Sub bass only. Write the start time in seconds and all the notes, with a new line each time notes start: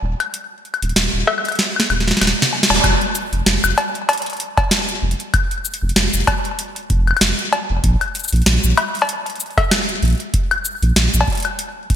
0.02 D#1
0.83 D#1
0.96 D#1
1.14 D#1
1.90 D#1
2.21 D#1
2.70 D#1
2.84 F1
3.33 F1
3.46 F1
3.64 F1
5.02 F1
5.82 F1
5.96 F1
6.14 F1
6.90 F1
7.21 F1
7.70 F1
7.84 A#1
8.33 A#1
8.46 A#1
8.64 A#1
10.03 A#1
10.82 A#1
10.96 A#1
11.14 A#1